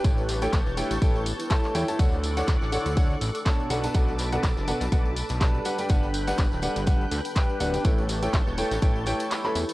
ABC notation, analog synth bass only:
X:1
M:4/4
L:1/16
Q:"Swing 16ths" 1/4=123
K:Amix
V:1 name="Analog synth bass" clef=bass
A,,,4 A,,, E,,, z A,,, A,,,3 z3 E,, z | D,,4 D,, A,,, z D,,3 A,,, z3 B,,, z | B,,,4 B,,, F,,, z B,,, B,,,3 B,,,3 z2 | G,,,4 G,,, D,,, z G,,,3 D,, z3 D,,, z |
A,,,4 A,,, E,,, z A,,, A,,,3 z3 E,, z |]